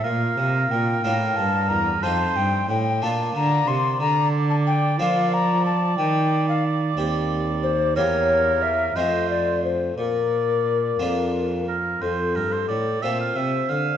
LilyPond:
<<
  \new Staff \with { instrumentName = "Recorder" } { \time 6/8 \key bes \lydian \tempo 4. = 60 f''4 g''4 a''8 bes''8 | a''8 g''8 g''8 a''8 bes''8 c'''8 | \key bes \major bes''8. a''16 g''8 f''8 bes''8 a''8 | g''8. f''16 r4. c''8 |
cis''4 e''8 ees''8 d''8 c''8 | bes'2~ bes'8 r8 | \key f \major a'4. c''4. | }
  \new Staff \with { instrumentName = "Oboe" } { \time 6/8 \key bes \lydian bes'4. bes'4. | c''4 r8 d''4.~ | \key bes \major d''2.~ | d''2. |
bes'4. c''4 r8 | d''2~ d''16 r16 bes'8 | \key f \major c''8 bes'16 c''16 d''8 e''16 f''16 e''8 f''8 | }
  \new Staff \with { instrumentName = "Harpsichord" } { \time 6/8 \key bes \lydian r4. <bes d' f'>4. | <c' ees' f'>4. <bes d' f'>4. | \key bes \major r4. <bes d' f'>4. | r4. <c' g'>4. |
<bes g'>4. <a c' f'>4. | r4. <bes d' f'>4. | \key f \major r4. <c' f' a'>4. | }
  \new Staff \with { instrumentName = "Harpsichord" } { \clef bass \time 6/8 \key bes \lydian bes,8 c8 bes,8 a,8 g,8 e,8 | f,8 g,8 a,8 bes,8 d8 c8 | \key bes \major d4. f4. | ees4. ees,4. |
e,4. f,4. | bes,4. f,4. | \key f \major f,8 g,8 a,8 bes,8 c8 d8 | }
  \new Staff \with { instrumentName = "Cello" } { \clef bass \time 6/8 \key bes \lydian bes,8 c8 bes,8 a,8 g,8 e,8 | f,8 g,8 a,8 bes,8 d8 c8 | \key bes \major d4. f4. | ees4. ees,4. |
e,4. f,4. | bes,4. f,4. | \key f \major f,8 g,8 a,8 bes,8 c8 d8 | }
>>